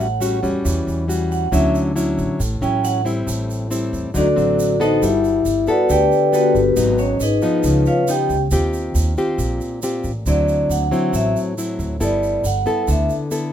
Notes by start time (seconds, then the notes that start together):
Already playing: A1 A2
0.00 F#5, shaker
0.20 G3 C#4 F#4, shaker
0.43 E2 G3 C#4 F#4, shaker
0.65 E2 E3, shaker
0.87 E2, shaker
1.08 G3 C#4 F#4, shaker
1.32 F#5, shaker
1.52 D2 D3 F#3 C#4 E4 E5, shaker
1.75 shaker
1.96 F#3 C#4 E4, shaker
2.18 A1, shaker
2.39 A1 A2, shaker
2.61 A1 F#3 C#4 E4 G5, shaker
2.85 F#5, shaker
3.05 G3 C4 E4, shaker
3.26 A1 A2, shaker
3.50 shaker
3.70 G3 C4 E4, shaker
3.93 E2, shaker
4.14 D2 D3 F#3 C4 D4 D#4 F#4 A4 D5, shaker
4.36 A1 F#3 C4, shaker
4.59 shaker
4.80 B3 D#4 F#4 A4 C5 D#5, shaker
5.02 G1 G3 E4 E5, shaker
5.24 shaker
5.45 G1, shaker
5.67 B3 F#4 A4 B4 D5 F#5, shaker
5.89 D2 D3 G4 B4 D5 G5, shaker
6.12 shaker
6.32 B3 F#4 G4 A4 B4, shaker
6.55 G1, shaker
6.76 G#1 G#2 F#3 B3 D#4, shaker
6.98 C#4 C#5, shaker
7.20 G#1 D#4 G#4 B4 D#5, shaker
7.42 F3 B3 D#4, shaker
7.63 C#2 C#3, shaker
7.86 F4 B4 C#5 F5, shaker
8.08 F3 B3 D#4 G4 G5, shaker
8.29 C#2, shaker
8.51 D#2 D#3 C4 F4 G4, shaker
8.73 shaker
8.95 D#2, shaker
9.17 C4 F4 G4, shaker
9.38 A#1 A#2, shaker
9.61 shaker
9.82 C4 F4 G4, shaker
10.04 A1, shaker
10.26 D2 D3 F#3 C4 E4 D5, shaker
10.48 shaker
10.69 D2 F#5, shaker
10.91 F#3 C4 E4, shaker
11.13 A1 A2 E5, shaker
11.36 shaker
11.58 F#3 C4 E4, shaker
11.79 D2, shaker
12.00 G1 G3 B3 E4 A4 D5, shaker
12.23 shaker
12.44 G1 F#5, shaker
12.66 B3 E4 A4, shaker
12.88 D2 D3 E5, shaker
13.10 shaker
13.31 B3 E4 A4, shaker